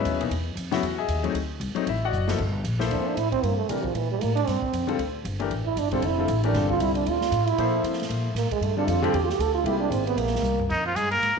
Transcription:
Already playing: C#3 F#3 B3 E4 B4 C#5 E5
0.05 D#2, hi-hat pedal, ride
0.20 B2 E3 A#3 D#4, ride
0.30 E2, ride
0.56 F2, hi-hat pedal, ride
0.71 C#3 F#3 B3 E4 F#4 F#5, snare, ride
0.81 E2, ride
0.98 G#4 D#5 E5 G#5
1.08 D#2, hi-hat pedal, ride
1.23 F#3 A3 C4 D#4, ride
1.34 D2, ride
1.60 C2, hi-hat pedal, ride
1.75 F#3 A3 C4 D#4, muted upright bass stroke, ride
1.86 A1 E4 E5, ride
2.05 F#4 D5 D#5 F#5
2.12 F#1, hi-hat pedal
2.28 F3 A#3 E4 A4, snare
2.38 G1, kick, crash
2.64 A#1, hi-hat pedal, ride
2.79 F3 A#3 E4 A4 C5, snare
2.90 D2 D4, ride
3.00 C4
3.08 D4
3.16 A2 E4, hi-hat pedal, ride
3.32 C4, kick, ride
3.43 G2 A#3, ride
3.57 A3
3.69 C3 E3 G3 A3 D4 G4 A#4, hi-hat pedal, ride
3.84 F3, kick
3.94 A#2 E3, ride
4.12 G3
4.21 A2 A#3, hi-hat pedal, ride
4.35 D4, ride
4.47 G2 C4, snare, ride
4.62 muted upright bass stroke, kick
4.72 F2, hi-hat pedal, ride
4.87 D3 G3 C4 F4 A4, ride
4.98 D2, ride
5.25 G1, hi-hat pedal, ride
5.39 E3 A3 D4 G4 A#4, ride
5.50 A1, ride
5.66 E4
5.76 G1 D4, hi-hat pedal, ride
5.91 D3 G3 C4 F4 A4, kick, ride
6.02 F1 E4, ride
6.18 D3 G3 C4 F4 A4
6.28 A1, hi-hat pedal, ride
6.44 E3 A3 D4 G4 A#4, ride
6.53 G1 D3 G3 C4 F4 A4, snare, ride
6.70 F4, kick
6.79 C2 E4, hi-hat pedal, ride
6.95 D4, ride
7.06 D2 F4, ride
7.21 snare
7.31 A2, hi-hat pedal, ride
7.47 E4, ride
7.57 A#2 F3 A#3 E4 A4 C5, ride
7.83 C3, hi-hat pedal, ride
7.93 snare
8.00 snare, ride
8.09 A#2, ride
8.34 A2 A#3, snare, hi-hat pedal, ride
8.51 G#3, muted upright bass stroke, kick, ride
8.60 G2 A3, ride
8.77 D3 G3 C4 D4 F4 A4
8.87 F2 F4, hi-hat pedal, ride
9.02 D3 G3 C4 F4 G4 A4, ride
9.13 E2 G4, ride
9.24 F4
9.29 G4, snare
9.38 D2 A4, hi-hat pedal, ride
9.55 F4
9.64 C2 G#3 A#3 C4 E4 G4, ride
9.80 D4
9.90 G#1 C4, hi-hat pedal, ride
10.06 B3, ride
10.16 A#1 A#3, ride
10.27 snare
10.35 snare
10.42 C2, hi-hat pedal
10.59 floor tom
10.70 F2 D#3 D#4, kick, crash
10.84 F3 F4
10.95 G2 G#3 G#4, hi-hat pedal, ride
11.11 A#3 A#4, ride
11.21 G#2, ride

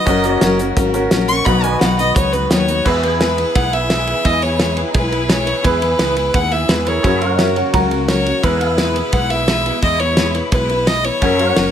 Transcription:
Already playing: F#4 D#5
0.05 F#1 C#3 F#3 A#3 C#4 F#4 A#4 D#5, kick, closed hi-hat
0.24 C#4 F#4 A#4, closed hi-hat
0.34 C#5
0.41 F#1 F#3 C#4 F#4 A#4, snare, closed hi-hat
0.59 C#4 F#4 A#4, closed hi-hat
0.77 G#1 F#3 C#4 F#4 A#4, kick, closed hi-hat
0.93 C#4 F#4 A#4, closed hi-hat
1.11 A#1 F#3 C#4 F#4 A#4, snare, closed hi-hat
1.28 C#4 F#4 A#4 C#6, closed hi-hat
1.45 B1 B2 D#3 F#3 B3 D#4 F#4 A#4 B4 C#5 B5, kick, closed hi-hat
1.49 B4
1.63 F#3 B3 D#4 B4 G#5, closed hi-hat
1.73 D#5
1.81 B1 B2 D#3 F#3 B3 D#4 B4 F#5, snare, closed hi-hat
1.99 F#3 B3 D#4 B4 D#5, closed hi-hat
2.16 C#2 F#3 B3 D#4 B4 C#5, kick, closed hi-hat
2.33 F#3 B3 D#4 B4, closed hi-hat
2.51 D#2 B2 D#3 F#3 B3 D#4 B4 C#5, snare, closed hi-hat
2.68 F#3 B3 D#4 B4, closed hi-hat
2.84 E2 E3 G#3 B3 E4 F#4 G#4 B4 E5, kick, crash
3.03 B3 E4 B4, ride
3.10 G#4
3.20 E3 G#3 B3 E4 B4, snare, ride
3.38 B3 E4 B4, ride
3.55 B1 G#3 B3 E4 B4 F#5, kick, ride
3.73 B3 E4 B4 E5, ride
3.90 E3 G#3 B3 E4 B4, snare, ride
4.07 B3 E4 B4, ride
4.25 E2 E3 G#3 B3 E4 B4 D#5, kick, ride
4.42 B3 E4 B4 C#5, ride
4.59 E3 G#3 B3 E4 B4, snare, ride
4.77 B3 E4 B4, ride
4.94 B1 G#3 B3 E4 B4, kick, ride
5.12 B3 E4 B4, ride
5.29 E3 G#3 B3 E4 B4 C#5, snare, ride
5.46 B3 E4 B4, ride
5.62 E2 E3 G#3 B3 E4 G#4 B4, kick, ride
5.81 B3 E4 B4, ride
5.99 C#2 E3 G#3 B3 E4 B4, snare, ride
6.16 B3 E4 B4, ride
6.34 D#2 G#3 B3 E4 B4 F#5, kick, ride
6.51 B3 E4 B4 E5, ride
6.68 E2 E3 G#3 B3 E4 B4, snare, ride
6.85 B3 E4 G#4 A#4 B4 C#5, ride
7.03 F#2 C#3 F#3 A#3 C#4 F#4 G#4 A#4 B4 C#5 E5, kick, ride
7.21 C#4 F#4 A#4, ride
7.28 A#4 C#5 F#5
7.34 C#5 D#5
7.38 F#3 C#4 F#4 A#4 E5, snare, ride
7.56 C#4 F#4 A#4 C#5 F#5, ride
7.73 C#2 F#3 C#4 F#4 A#4 F#5 A#5, kick, ride
7.91 C#4 F#4 A#4, ride
8.08 F#3 C#4 F#4 A#4 C#5, snare, ride
8.25 C#4 F#4 A#4, ride
8.42 E2 B2 E3 G#3 B3 E4 G#4 A#4 B4 F#5, kick, ride
8.61 B3 E4 B4, ride
8.68 G#4 E5
8.78 E3 G#3 B3 E4 B4, snare, ride
8.96 B3 E4 B4, ride
9.13 B1 G#3 B3 E4 B4 F#5, kick, ride
9.30 B3 E4 B4 E5, ride
9.48 E3 G#3 B3 E4 B4, snare, ride
9.65 B3 E4 B4, ride
9.82 E2 E3 G#3 B3 E4 B4 D#5, kick, ride
9.99 B3 E4 B4 C#5, ride
10.17 E3 G#3 B3 E4 B4, snare, ride
10.34 B3 E4 B4, ride
10.52 B1 G#3 B3 E4 B4, kick, ride
10.69 B3 E4 B4, ride
10.87 E3 G#3 B3 E4 B4 D#5, snare, ride
11.04 B3 E4 B4 C#5, ride
11.20 F#2 C#3 F#3 A#3 C#4 F#4 G#4 A#4 B4, kick, ride
11.24 A#4 E5
11.39 C#4 F#4 A#4, ride
11.47 A#4 C#5 F#5
11.56 F#1 F#3 C#4 F#4 A#4, snare, ride

